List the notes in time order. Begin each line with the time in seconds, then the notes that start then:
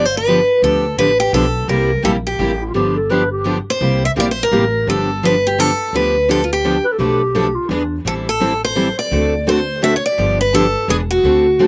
Already playing: G1
0.05 C5
0.17 B4
0.29 D3 F3 B3 D4 G4
0.62 D2 D3 F3 B3 D4 G4 A4
0.97 A1 D3 F3 B3 D4 G4 B4
1.20 G4
1.32 B1 D3 F3 B3 D4 G4 A4
1.68 C2 C3 G3 A#3 E4 G4 A#4
2.02 A#1 C3 G3 A#3 E4 G4 A4
2.27 G4
2.39 A1 C3 G3 A#3 E4 G4
2.61 E4
2.68 F4
2.74 G1 D3 F3 B3 D4 G4
2.96 A4
3.09 D3 F3 B3 D4 G4 B4
3.31 G4
3.44 D3 F3 B3 D4 G4
3.70 C5
3.80 C2 C3 G3 A#3 E4 G4
4.05 E5
4.16 A#1 C3 G3 A#3 E4 G4
4.20 D5
4.31 C5
4.43 A#4
4.51 A1 C3 G3 A#3 E4 G4
4.87 G1 D3 F3 B3 D4 G4 A4
5.23 D3 F3 B3 D4 G4 B4
5.47 G4
5.58 D3 F3 B3 D4 G4 A4
5.93 D2 D3 F3 B3 D4 G4 B4
6.29 D3 F3 B3 D4 G4 A4
6.44 F4
6.53 G4
6.64 D3 F3 B3 D4 G4
6.84 B4
6.92 A4
6.98 B1 B2 F3 A3 D4 G4 A4 B4
7.35 B2 F3 A3 D4 A4 B4
7.55 F4
7.69 E2 E3 B3 D4 G#4 B4
8.05 A1 E3 G3 C4 E4 A4
8.29 A4
8.41 E3 G3 C4 E4 A4
8.65 C5
8.76 E3 G3 C4 E4 A4
8.99 D5
9.11 D2 D3 A3 C4 F#4 A4
9.47 D3 A3 C4 F#4 A4 C5
9.82 D3 A3 C4 F#4 A4 E5
9.96 C#5
10.06 D5
10.18 G1 D3 F3 B3 D4 G4
10.41 B4
10.53 D3 F3 B3 D4 G4 A4
10.88 E1 E3 B3 D4 G#4 B4
11.11 F#4
11.23 D2 D3 A3 C4 F#4 A4
11.59 D3 A3 C4 F#4 A4